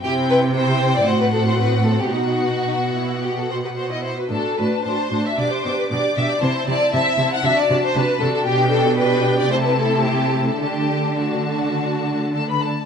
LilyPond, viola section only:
\new Staff \with { instrumentName = "Viola section" } { \time 4/4 \key b \phrygian \tempo 4 = 112 <c' e'>4 <c' e'>4 <c' fis'>2 | <dis' fis'>4 dis'8 e'8 fis'8. g'16 fis'16 e'8 fis'16 | \key d \mixolydian <d' fis'>8 <d' fis'>8 <d' fis'>8 <d' fis'>8 <d' g'>8 <d' g'>8 <d' g'>8 <d' g'>8 | <c' e'>8 <c' e'>8 <c' e'>8 <c' e'>8 <d' fis'>8 <d' fis'>8 <d' fis'>8 <d' fis'>8 |
<d' g'>4 <d' g'>4 <a e'>2 | <a d'>4 <a d'>2~ <a d'>8 r8 | }